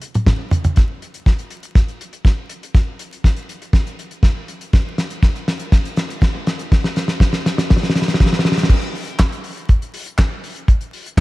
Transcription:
0.01 closed hi-hat
0.14 closed hi-hat, mid tom
0.27 kick, snare, closed hi-hat, mid tom
0.51 closed hi-hat, mid tom
0.64 closed hi-hat, mid tom
0.76 kick, snare, closed hi-hat
1.02 closed hi-hat
1.14 closed hi-hat
1.26 kick, snare, closed hi-hat
1.39 closed hi-hat
1.50 closed hi-hat
1.63 closed hi-hat
1.75 kick, snare, closed hi-hat
1.88 closed hi-hat
2.01 closed hi-hat
2.13 closed hi-hat
2.25 kick, snare, closed hi-hat
2.50 closed hi-hat
2.63 closed hi-hat
2.75 kick, snare, closed hi-hat
2.99 closed hi-hat
3.13 closed hi-hat
3.24 kick, snare, closed hi-hat
3.36 closed hi-hat
3.49 closed hi-hat
3.62 closed hi-hat
3.73 kick, snare, closed hi-hat
3.87 closed hi-hat
3.99 closed hi-hat
4.11 closed hi-hat
4.23 kick, snare, closed hi-hat
4.48 closed hi-hat
4.61 closed hi-hat
4.73 kick, snare, closed hi-hat
4.98 snare, closed hi-hat
5.10 closed hi-hat
5.22 kick, snare, closed hi-hat
5.36 closed hi-hat
5.48 snare, closed hi-hat
5.59 closed hi-hat
5.72 kick, snare, closed hi-hat
5.85 closed hi-hat
5.97 snare, closed hi-hat
6.10 closed hi-hat
6.22 kick, snare, closed hi-hat
6.47 snare, closed hi-hat
6.59 closed hi-hat
6.72 kick, snare, closed hi-hat
6.84 snare
6.96 snare, closed hi-hat
7.08 snare, closed hi-hat
7.20 kick, snare, closed hi-hat
7.33 snare, closed hi-hat
7.46 snare, closed hi-hat
7.58 snare, closed hi-hat
7.70 kick, snare, closed hi-hat
7.77 snare
7.83 snare, closed hi-hat
7.90 snare
7.96 snare, closed hi-hat
8.02 snare
8.08 snare, closed hi-hat
8.14 snare
8.20 kick, snare, closed hi-hat
8.26 snare
8.33 snare
8.39 snare
8.45 snare, closed hi-hat
8.52 snare
8.57 snare, closed hi-hat
8.63 snare
8.69 kick, closed hi-hat, crash
8.82 closed hi-hat
8.95 open hi-hat
9.07 closed hi-hat
9.19 kick, snare, clap, closed hi-hat
9.32 closed hi-hat
9.44 open hi-hat
9.57 closed hi-hat
9.69 kick, closed hi-hat
9.82 closed hi-hat
9.94 open hi-hat
10.06 closed hi-hat
10.18 kick, snare, clap, closed hi-hat
10.44 open hi-hat
10.56 closed hi-hat
10.68 kick, closed hi-hat
10.81 closed hi-hat
10.93 open hi-hat
11.06 closed hi-hat

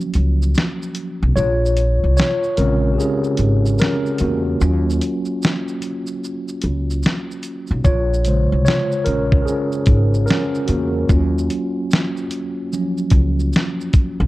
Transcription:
Already playing: F3 F#3 C#4
0.01 shaker
0.14 C#2, closed hi-hat, shaker
0.42 shaker
0.55 snare, shaker
0.82 shaker
0.95 closed hi-hat, shaker
1.23 B1
1.36 A#1 F4 C#5, shaker
1.65 shaker
1.77 closed hi-hat, shaker
2.04 C2
2.17 F4 C#5, snare, shaker
2.43 shaker
2.57 A#1 C#3 G#3 C4 C#4 A#4, closed hi-hat, shaker
2.94 G4
2.98 C#4 G#4, shaker
3.24 shaker
3.37 G#1, closed hi-hat, shaker
3.66 shaker
3.78 C#4 A#4, snare, shaker
4.06 shaker
4.18 E2 A#3 F#4, closed hi-hat, shaker
4.61 D#2 F#3 C#4 F4, shaker
4.90 shaker
5.01 closed hi-hat, shaker
5.25 shaker
5.42 snare, shaker
5.68 shaker
5.82 closed hi-hat, shaker
6.07 shaker
6.24 shaker
6.48 shaker
6.62 C#2, closed hi-hat, shaker
6.90 shaker
7.03 snare, shaker
7.31 shaker
7.43 closed hi-hat, shaker
7.67 B1, shaker
7.84 A#1 F4 C#5, kick, shaker
8.14 shaker
8.25 C#3 G#3 C5, closed hi-hat, shaker
8.52 C2
8.65 F4 C#5, snare, shaker
8.92 shaker
9.04 A#1 C#4 A#4, closed hi-hat, shaker
9.32 kick
9.42 G#4 A#4
9.47 C#4, shaker
9.72 shaker
9.86 G#1, kick, closed hi-hat, shaker
10.14 shaker
10.26 A#4, shaker
10.30 C#4, snare
10.55 shaker
10.66 E2 F#4, closed hi-hat, shaker
10.71 A#3
11.09 D#2 F#3 C#4 F4, kick, shaker
11.38 shaker
11.50 closed hi-hat, shaker
11.91 snare, shaker
12.17 shaker
12.31 closed hi-hat, shaker
12.73 F3 F#3 C#4, shaker
12.98 shaker
13.10 C#2, kick, closed hi-hat, shaker
13.39 shaker
13.53 snare, shaker
13.81 shaker
13.93 kick, closed hi-hat, shaker
14.20 B1

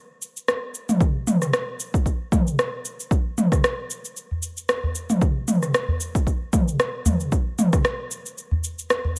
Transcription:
0.22 cabasa
0.37 cabasa
0.48 cross-stick, cabasa
0.75 cabasa
0.89 mid tom, cabasa
1.01 kick, cabasa
1.27 mid tom, cabasa
1.42 cross-stick, cabasa
1.53 cross-stick, cabasa
1.80 cabasa
1.94 kick, cabasa
2.06 kick, cabasa
2.32 kick, mid tom, cabasa
2.47 cabasa
2.59 cross-stick, cabasa
2.85 cabasa
3.00 cabasa
3.11 kick, cabasa
3.38 mid tom, cabasa
3.52 kick, cross-stick, cabasa
3.64 cross-stick, cabasa
3.90 cabasa
4.05 cabasa
4.17 cabasa
4.31 udu
4.43 cabasa
4.57 cabasa
4.69 cross-stick, cabasa
4.83 udu
4.95 cabasa
5.10 mid tom, cabasa
5.21 kick, cabasa
5.48 mid tom, cabasa
5.63 cross-stick, cabasa
5.74 cross-stick, cabasa
5.88 udu
6.01 cabasa
6.15 kick, cabasa
6.27 kick, cabasa
6.53 kick, mid tom, cabasa
6.68 cabasa
6.80 cross-stick, cabasa
7.06 mid tom, udu, cabasa
7.20 cabasa
7.32 kick, cabasa
7.59 mid tom, cabasa
7.73 kick, cross-stick, cabasa
7.85 cross-stick, cabasa
8.11 cabasa
8.26 cabasa
8.38 cabasa
8.51 udu
8.64 cabasa
8.79 cabasa
8.90 cross-stick, cabasa
9.05 udu

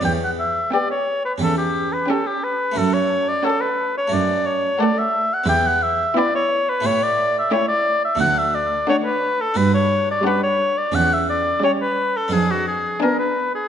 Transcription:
0.01 E2 B3 G4 G5
0.24 F#5
0.39 E5
0.72 B3 G4 D5 G5
0.91 C#5
1.25 B4
1.38 E2 C#4 G4
1.43 A4
1.58 G4
1.93 B4
2.08 C#4 G4 A4 G5
2.27 G4
2.44 B4
2.72 A3 C#4 F#4
2.76 F#2 A4
2.93 C#5
3.29 D5
3.44 C#4 A4 F#5
3.61 B4
3.97 C#5
4.07 A3 F#4
4.12 F#2 D5
4.46 C#5
4.80 A3 A4 D5 F#5
4.99 E5
5.34 F#5
5.44 B3 E4 G4
5.48 E2 G5
5.67 F#5
5.83 E5
6.16 B3 E4 D5 G5
6.35 C#5
6.69 B4
6.80 A3 E4 G4
6.85 A2 C#5
7.03 D5
7.39 E5
7.52 A3 E4 C#5 G5
7.69 D5
8.05 E5
8.15 A3 D4 F#4
8.20 D2 F#5
8.38 E5
8.55 D5
8.89 A3 D4 C#5 F#5
9.05 B4
9.41 A4
9.54 G2 D4 F#4 B4
9.74 C#5
10.11 D5
10.25 G3 D4 B4 F#5
10.43 C#5
10.78 D5
10.92 E2 C#4 G4 F#5
11.13 E5
11.30 D5
11.62 G3 C#4 C#5 G5
11.82 B4
12.17 A4
12.28 F2 B3 D4 G#4
12.32 F2 G#4
12.51 F#4
12.68 G#4
13.01 B3 D4 A#4 G#5
13.19 B4
13.55 G#4

